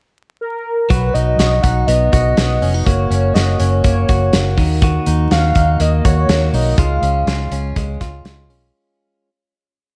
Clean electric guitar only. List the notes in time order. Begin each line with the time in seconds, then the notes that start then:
0.90 F#3 F#4
1.15 D#4
1.39 F#4
1.64 D#4
1.88 B3
2.13 F#4
2.37 B3
2.62 C#4
2.74 D#4
2.86 A#3 F#4
3.11 C#4
3.35 F#4
3.60 C#4
3.85 A#3
4.09 F#4
4.34 A#3
4.58 D#3
4.83 D#3 F#4
5.07 D#4
5.31 F#4
5.56 D#4
5.81 A#3
6.05 F#4
6.30 A#3
6.54 D#4
6.78 G#3 F4
7.04 C#4
7.28 F4
7.52 C#4
7.76 G#3
8.01 F4
8.50 C#4